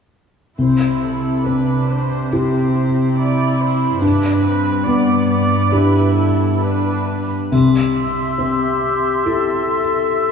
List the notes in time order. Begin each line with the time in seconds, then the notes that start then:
0.58 C2 C3 E4 C5
1.03 A4
1.46 C4 D4 B4
1.90 C5
2.32 C4 E4 G4 C5
3.18 E4 D5
3.60 C5
4.02 G2 D4 B4
4.43 C4
4.86 B3 D5
5.29 D5
5.72 D4 E4 G4 B4
6.15 A4
6.61 D4 B4
7.52 C2 G4 E5 C6, triangle
8.38 C4
9.26 E4 G4 A4